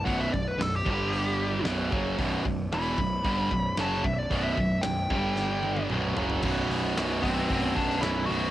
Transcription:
<<
  \new Staff \with { instrumentName = "Lead electric guitar" } { \time 4/4 \key b \minor \tempo 4 = 113 fis''16 e''16 d''16 b'16 a'16 g'16 g'4. r4 | r4 b''2 a''8 e''16 d''16~ | d''16 e''8. g''2 r4 | \key c \lydian r4. c'4 d'8 e'8 fis'8 | }
  \new Staff \with { instrumentName = "Distorted electric guitar" } { \clef bass \time 4/4 \key b \minor <b,, fis, b,>8 <b,, fis,>8 <b,, fis,>8 <g, d g>4. <b,, fis, b,>8 <fis, cis fis>8 | <b,, fis, b,>8 <b,, fis,>8 <e, b, e>8 <b,, fis,>8 <g, d g>8 <b,, fis,>8 <fis, cis fis>8 <b,, fis,>8 | <b,, fis, b,>8 <b,, fis,>8 <b,, fis,>8 <g, d g>4. <b,, fis, b,>8 <fis, cis fis>8 | \key c \lydian <b,, fis, b,>4 <b,, fis, b,>8 <b,, fis, b,>8 <b,, fis, b,>4 <b,, fis, b,>8 <b,, fis, b,>8 | }
  \new Staff \with { instrumentName = "Distorted electric guitar" } { \clef bass \time 4/4 \key b \minor <b,, fis, b,>8 <b,, fis,>8 <b,, fis,>8 <g, d g>4. <b,, fis, b,>8 <fis, cis fis>8 | <b,, fis, b,>8 <b,, fis,>8 <e, b, e>8 <b,, fis,>8 <g, d g>8 <b,, fis,>8 <fis, cis fis>8 <b,, fis,>8 | <b,, fis, b,>8 <b,, fis,>8 <b,, fis,>8 <g, d g>4. <b,, fis, b,>8 <fis, cis fis>8 | \key c \lydian <b,, fis, b,>4 <b,, fis, b,>8 <b,, fis, b,>8 <b,, fis, b,>4 <b,, fis, b,>8 <b,, fis, b,>8 | }
  \new Staff \with { instrumentName = "Picked electric bass" } { \clef bass \time 4/4 \key b \minor b,,,8 b,,,8 b,,,8 g,,4. b,,,8 fis,,8 | b,,,8 b,,,8 e,,8 b,,,8 g,,8 b,,,8 fis,,8 b,,,8 | b,,,8 b,,,8 b,,,8 g,,4. b,,,8 fis,,8 | \key c \lydian b,,,8 b,,,8 b,,,8 b,,,8 b,,,8 b,,,8 b,,,8 b,,,8 | }
  \new DrumStaff \with { instrumentName = "Drums" } \drummode { \time 4/4 <hho bd>8 bd8 <hho sn>8 bd8 hho4 <hho sn>8 bd8 | <hho bd>8 bd8 <hho sn>8 bd8 <hho bd>8 bd8 <hho sn>8 bd8 | <hho bd>8 bd8 <hho sn>8 bd8 sn8 tommh16 tommh16 toml8 tomfh16 tomfh16 | <cymc bd>8 hho8 <hho sn>8 <hho bd>8 <hho bd>8 <hho bd>16 sn16 <hho sn>8 hho8 | }
>>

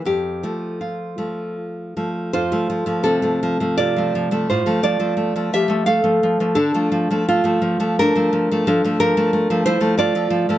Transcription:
\new Staff \with { instrumentName = "Nylon-string guitar" } { \time 3/4 \key f \major \tempo 4 = 86 << { g'4 f'4 r4 | <f' c''>4 <c' a'>4 <f' d''>4 | <f' c''>8 <f' d''>4 <g' e''>8 <a' f''>4 | <d' a'>4 <a f'>4 <d' bes'>4 |
<d' a'>8 <d' bes'>4 <e' c''>8 <f' d''>4 | } \\ { f,8 <f a>4 <f a>4 <f a>8 | f,16 <f a>16 f16 <f a>16 c16 <f a>16 f16 <f a>16 c16 <f a>16 f16 <f a>16 | a,16 <f a>16 f16 <f a>16 a16 <f a>16 f16 <f a>16 a16 <f a>16 f16 <f a>16 | d16 <f a>16 f16 <f a>8 <f a>16 f16 <f a>16 a16 <f a>16 f16 <f a>16 |
f16 <f a>16 f16 <f a>16 a16 <f a>16 f16 <f a>16 a16 <f a>16 f16 <f a>16 | } >> }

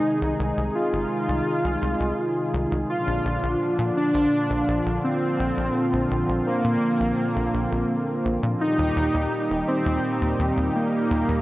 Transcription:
<<
  \new Staff \with { instrumentName = "Supersaw synth" } { \time 4/4 \key bes \mixolydian \tempo 4 = 84 ees'4 f'2. | f'4. d'4. c'4~ | c'4 bes2. | ees'4. c'4. bes4 | }
  \new Staff \with { instrumentName = "Analog synth pad" } { \clef bass \time 4/4 \key bes \mixolydian << { <c ees aes aes'>1 | <bes, d f f'>1~ | <bes, d f f'>1 | <bes, ees g g'>1 | } \\ { ees'1 | d'1 | c'1 | ees'1 | } >> }
  \new Staff \with { instrumentName = "Analog synth bass" } { \clef bass \time 4/4 \key bes \mixolydian r16 c,16 c,16 c,16 r16 g,,16 r16 c,16 r16 c,16 c,16 c,16 r8 c,16 c,16 | r16 bes,,16 bes,,16 bes,,16 r16 bes,16 r16 bes,,16 r16 bes,,16 bes,,16 bes,,16 r8 bes,,16 bes,,16 | r16 bes,,16 bes,,16 bes,,16 r16 bes,16 r16 bes,,16 r16 bes,,16 bes,,16 bes,,16 r8 bes,,16 bes,16 | r16 ees,16 ees,16 ees,16 r16 ees,,16 r16 ees,16 r16 ees,16 ees,16 ees,16 r8 ees,16 ees,16 | }
>>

